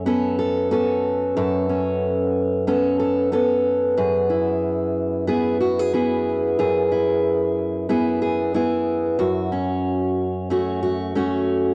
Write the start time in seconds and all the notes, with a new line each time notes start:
Already playing: F#2
0.06 B3 C#4 A4
0.39 A4
0.71 B3 C#4 A4
1.37 F#2 A4
1.69 C#4
2.67 B3 C#4 A4
2.99 A4
3.32 B3 C#4 A4
3.98 F#2 G#4
4.30 E4
5.27 B3 E4 G#4
5.61 F#4
5.79 G#4
5.94 B3 E4 G#4
6.59 F#2 G#4
6.91 E4
7.89 B3 E4 G#4
8.22 G#4
8.54 B3 E4 G#4
9.19 F#2 F#4
9.52 C#4
10.50 A3 C#4 F#4
10.82 F#4
11.15 A3 C#4 F#4